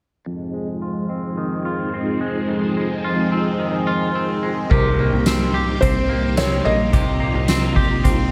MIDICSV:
0, 0, Header, 1, 6, 480
1, 0, Start_track
1, 0, Key_signature, -4, "minor"
1, 0, Tempo, 555556
1, 229, Time_signature, 4, 2, 24, 8
1, 7184, End_track
2, 0, Start_track
2, 0, Title_t, "Felt piano"
2, 0, Program_c, 0, 0
2, 4058, Note_on_c, 0, 70, 76
2, 5016, Note_on_c, 0, 72, 94
2, 5052, Note_off_c, 0, 70, 0
2, 5469, Note_off_c, 0, 72, 0
2, 5509, Note_on_c, 0, 73, 88
2, 5748, Note_on_c, 0, 75, 100
2, 5756, Note_off_c, 0, 73, 0
2, 6674, Note_off_c, 0, 75, 0
2, 7184, End_track
3, 0, Start_track
3, 0, Title_t, "Clean electric guitar"
3, 0, Program_c, 1, 27
3, 226, Note_on_c, 1, 41, 68
3, 464, Note_on_c, 1, 56, 44
3, 707, Note_on_c, 1, 65, 52
3, 944, Note_on_c, 1, 60, 49
3, 1187, Note_on_c, 1, 51, 59
3, 1418, Note_off_c, 1, 65, 0
3, 1428, Note_on_c, 1, 65, 57
3, 1669, Note_off_c, 1, 60, 0
3, 1673, Note_on_c, 1, 60, 48
3, 1898, Note_off_c, 1, 56, 0
3, 1908, Note_on_c, 1, 56, 51
3, 2137, Note_off_c, 1, 41, 0
3, 2148, Note_on_c, 1, 41, 68
3, 2383, Note_off_c, 1, 56, 0
3, 2393, Note_on_c, 1, 56, 48
3, 2620, Note_off_c, 1, 65, 0
3, 2630, Note_on_c, 1, 65, 54
3, 2863, Note_off_c, 1, 60, 0
3, 2866, Note_on_c, 1, 60, 53
3, 3104, Note_off_c, 1, 51, 0
3, 3107, Note_on_c, 1, 51, 55
3, 3333, Note_off_c, 1, 65, 0
3, 3343, Note_on_c, 1, 65, 62
3, 3585, Note_off_c, 1, 60, 0
3, 3588, Note_on_c, 1, 60, 49
3, 3816, Note_off_c, 1, 56, 0
3, 3826, Note_on_c, 1, 56, 48
3, 4065, Note_on_c, 1, 48, 79
3, 4068, Note_off_c, 1, 41, 0
3, 4068, Note_off_c, 1, 65, 0
3, 4072, Note_on_c, 1, 67, 71
3, 4116, Note_off_c, 1, 56, 0
3, 4313, Note_on_c, 1, 58, 56
3, 4339, Note_off_c, 1, 60, 0
3, 4552, Note_on_c, 1, 60, 61
3, 4785, Note_off_c, 1, 67, 0
3, 4788, Note_on_c, 1, 67, 61
3, 5023, Note_off_c, 1, 60, 0
3, 5026, Note_on_c, 1, 60, 57
3, 5253, Note_off_c, 1, 58, 0
3, 5264, Note_on_c, 1, 58, 63
3, 5502, Note_off_c, 1, 60, 0
3, 5505, Note_on_c, 1, 60, 57
3, 5733, Note_off_c, 1, 58, 0
3, 5744, Note_on_c, 1, 58, 62
3, 5975, Note_off_c, 1, 48, 0
3, 5985, Note_on_c, 1, 48, 86
3, 5986, Note_off_c, 1, 67, 0
3, 5990, Note_on_c, 1, 67, 69
3, 6131, Note_off_c, 1, 51, 0
3, 6211, Note_off_c, 1, 58, 0
3, 6221, Note_on_c, 1, 58, 59
3, 6467, Note_off_c, 1, 60, 0
3, 6470, Note_on_c, 1, 60, 61
3, 6701, Note_off_c, 1, 67, 0
3, 6705, Note_on_c, 1, 67, 67
3, 6944, Note_off_c, 1, 60, 0
3, 6947, Note_on_c, 1, 60, 61
3, 7176, Note_off_c, 1, 58, 0
3, 7184, Note_off_c, 1, 48, 0
3, 7184, Note_off_c, 1, 60, 0
3, 7184, Note_off_c, 1, 67, 0
3, 7184, End_track
4, 0, Start_track
4, 0, Title_t, "String machine"
4, 0, Program_c, 2, 50
4, 225, Note_on_c, 2, 68, 75
4, 226, Note_on_c, 2, 53, 70
4, 228, Note_on_c, 2, 60, 66
4, 230, Note_on_c, 2, 56, 64
4, 232, Note_on_c, 2, 63, 58
4, 4032, Note_off_c, 2, 68, 0
4, 4033, Note_off_c, 2, 53, 0
4, 4034, Note_off_c, 2, 60, 0
4, 4035, Note_off_c, 2, 56, 0
4, 4036, Note_off_c, 2, 63, 0
4, 4064, Note_on_c, 2, 48, 73
4, 4064, Note_on_c, 2, 58, 72
4, 4065, Note_on_c, 2, 55, 67
4, 4066, Note_on_c, 2, 63, 70
4, 4067, Note_on_c, 2, 67, 78
4, 5969, Note_off_c, 2, 67, 0
4, 5989, Note_on_c, 2, 65, 91
4, 7184, Note_off_c, 2, 48, 0
4, 7184, Note_off_c, 2, 55, 0
4, 7184, Note_off_c, 2, 58, 0
4, 7184, Note_off_c, 2, 63, 0
4, 7184, Note_off_c, 2, 65, 0
4, 7184, End_track
5, 0, Start_track
5, 0, Title_t, "Analog synth bass"
5, 0, Program_c, 3, 38
5, 4070, Note_on_c, 3, 36, 114
5, 4411, Note_off_c, 3, 36, 0
5, 4431, Note_on_c, 3, 36, 91
5, 5000, Note_off_c, 3, 36, 0
5, 5032, Note_on_c, 3, 36, 100
5, 5716, Note_off_c, 3, 36, 0
5, 5753, Note_on_c, 3, 34, 92
5, 5979, Note_off_c, 3, 34, 0
5, 5990, Note_on_c, 3, 36, 102
5, 6332, Note_off_c, 3, 36, 0
5, 6349, Note_on_c, 3, 36, 98
5, 6919, Note_off_c, 3, 36, 0
5, 6953, Note_on_c, 3, 36, 109
5, 7184, Note_off_c, 3, 36, 0
5, 7184, End_track
6, 0, Start_track
6, 0, Title_t, "Drums"
6, 4067, Note_on_c, 9, 49, 95
6, 4069, Note_on_c, 9, 36, 119
6, 4153, Note_off_c, 9, 49, 0
6, 4155, Note_off_c, 9, 36, 0
6, 4542, Note_on_c, 9, 42, 73
6, 4547, Note_on_c, 9, 54, 66
6, 4548, Note_on_c, 9, 38, 120
6, 4628, Note_off_c, 9, 42, 0
6, 4633, Note_off_c, 9, 54, 0
6, 4634, Note_off_c, 9, 38, 0
6, 5030, Note_on_c, 9, 42, 65
6, 5032, Note_on_c, 9, 36, 91
6, 5116, Note_off_c, 9, 42, 0
6, 5119, Note_off_c, 9, 36, 0
6, 5504, Note_on_c, 9, 42, 77
6, 5507, Note_on_c, 9, 54, 59
6, 5510, Note_on_c, 9, 38, 110
6, 5591, Note_off_c, 9, 42, 0
6, 5593, Note_off_c, 9, 54, 0
6, 5596, Note_off_c, 9, 38, 0
6, 5988, Note_on_c, 9, 42, 67
6, 5989, Note_on_c, 9, 36, 114
6, 6075, Note_off_c, 9, 36, 0
6, 6075, Note_off_c, 9, 42, 0
6, 6461, Note_on_c, 9, 42, 70
6, 6466, Note_on_c, 9, 54, 62
6, 6467, Note_on_c, 9, 38, 105
6, 6548, Note_off_c, 9, 42, 0
6, 6552, Note_off_c, 9, 54, 0
6, 6554, Note_off_c, 9, 38, 0
6, 6709, Note_on_c, 9, 36, 99
6, 6795, Note_off_c, 9, 36, 0
6, 6952, Note_on_c, 9, 42, 61
6, 6953, Note_on_c, 9, 36, 96
6, 7038, Note_off_c, 9, 42, 0
6, 7039, Note_off_c, 9, 36, 0
6, 7184, End_track
0, 0, End_of_file